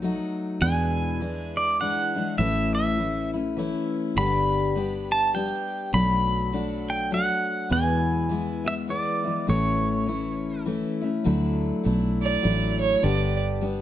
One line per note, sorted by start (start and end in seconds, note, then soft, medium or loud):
0.00 0.18 B1 medium
0.00 0.61 F#3 medium
0.00 0.62 A3 medium
0.04 0.62 D#4 medium
0.04 0.63 F#4 medium
0.61 1.95 E2 medium
0.61 1.21 E2 medium
0.61 1.21 B2 medium
0.61 1.19 E3 medium
0.61 1.20 G#3 medium
0.61 1.20 D4 medium
0.61 1.22 E4 medium
0.61 1.59 G#5 loud
1.20 1.78 E3 medium
1.20 1.79 G#3 medium
1.20 1.80 D4 medium
1.20 1.81 E4 medium
1.57 1.81 D5 medium
1.80 2.16 E3 medium
1.80 2.16 G#3 medium
1.80 2.15 D4 medium
1.80 2.14 E4 medium
1.80 2.38 F#5 medium
2.15 2.38 E3 soft
2.15 2.40 G#3 soft
2.15 2.39 D4 soft
2.15 2.39 E4 soft
2.38 3.73 A1 medium
2.38 2.98 A2 medium
2.38 2.96 E3 medium
2.38 2.97 A3 medium
2.38 2.98 C#4 medium
2.38 2.98 E4 medium
2.38 2.73 E5 medium
2.75 3.30 E5 medium
2.97 3.34 E3 medium
2.97 3.34 A3 medium
2.97 3.34 C#4 medium
2.97 3.32 E4 medium
3.34 3.56 A3 soft
3.34 3.57 C#4 soft
3.34 3.57 E4 soft
3.57 4.16 E3 medium
3.57 4.17 A3 medium
3.57 4.17 C#4 medium
3.57 4.17 E4 medium
4.16 5.50 G1 medium
4.16 4.75 G2 medium
4.16 4.75 D3 medium
4.16 4.74 G3 medium
4.16 4.75 B3 medium
4.16 4.76 D4 medium
4.16 4.76 G4 medium
4.16 5.11 B5 loud
4.75 5.33 G3 medium
4.75 5.34 B3 medium
4.75 5.34 D4 medium
4.75 5.35 G4 medium
5.12 5.36 A5 medium
5.34 5.93 G3 medium
5.34 5.93 B3 medium
5.34 5.93 D4 medium
5.34 5.95 G4 medium
5.34 5.96 G5 medium
5.93 7.28 B1 medium
5.93 6.52 B2 medium
5.93 6.51 F#3 medium
5.93 6.52 A3 medium
5.93 6.52 D4 medium
5.93 6.54 F#4 medium
5.93 6.92 B5 loud
6.52 7.09 F#3 medium
6.52 7.11 A3 medium
6.52 7.11 D4 medium
6.52 7.12 F#4 medium
6.90 7.11 G5 medium
7.11 7.70 F#3 medium
7.11 7.70 A3 medium
7.11 7.71 D4 medium
7.11 7.71 F#4 medium
7.11 7.72 F#5 medium
7.69 8.30 E2 medium
7.69 9.05 E2 medium
7.69 8.30 B2 medium
7.69 8.28 E3 medium
7.69 8.28 G#3 medium
7.69 8.29 B3 medium
7.69 8.31 E4 medium
7.69 8.70 G#5 medium
8.29 8.65 E3 medium
8.29 8.65 G#3 medium
8.29 8.64 B3 medium
8.29 8.63 E4 medium
8.64 8.86 E3 soft
8.64 8.88 G#3 soft
8.64 8.89 B3 soft
8.64 8.89 E4 soft
8.64 8.74 E5 medium
8.88 9.24 E3 medium
8.88 9.25 G#3 medium
8.88 9.24 B3 medium
8.88 9.23 E4 medium
8.88 9.49 D5 medium
9.24 9.47 E3 soft
9.24 9.48 G#3 soft
9.24 9.48 B3 soft
9.24 9.48 E4 soft
9.47 10.83 A1 medium
9.47 10.07 A2 medium
9.47 10.05 E3 medium
9.47 10.06 A3 medium
9.47 10.07 C#4 medium
9.47 10.08 E4 medium
9.47 10.63 C#5 medium
10.06 10.64 E3 soft
10.06 10.65 A3 medium
10.06 10.66 C#4 medium
10.06 10.67 E4 medium
10.65 11.02 E3 medium
10.65 11.02 A3 medium
10.65 11.01 C#4 medium
10.65 11.00 E4 medium
11.01 11.24 A3 soft
11.01 11.26 C#4 soft
11.01 11.25 E4 medium
11.24 11.71 D2 medium
11.24 11.84 D3 medium
11.24 11.82 F#3 medium
11.24 11.83 A3 medium
11.24 11.85 D4 medium
11.24 11.85 E4 medium
11.84 12.36 B1 medium
11.84 12.41 F#3 medium
11.84 12.42 A3 medium
11.84 12.44 D4 medium
11.84 12.44 E4 medium
12.22 12.77 D5 medium
12.42 12.95 A1 medium
12.42 13.02 F#3 medium
12.42 13.03 A3 medium
12.42 13.04 D4 medium
12.42 13.04 E4 medium
12.81 13.05 C#5 medium
13.02 13.81 G1 medium
13.02 13.62 G2 medium
13.02 13.62 D3 medium
13.02 13.60 G3 medium
13.02 13.62 B3 medium
13.02 13.63 D4 medium
13.02 13.62 G4 medium
13.02 13.39 D5 medium
13.61 13.81 G3 medium
13.61 13.81 B3 medium
13.61 13.81 D4 medium
13.61 13.81 G4 medium